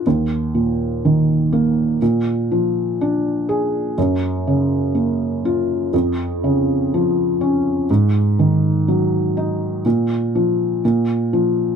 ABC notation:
X:1
M:4/4
L:1/8
Q:1/4=61
K:Bbphr
V:1 name="Felt piano" clef=bass
E,, B,, E, B, B,, F, =D A | G,, D, B, F F,, D, F, D | A,, E, G, E B,, F, B,, F, |]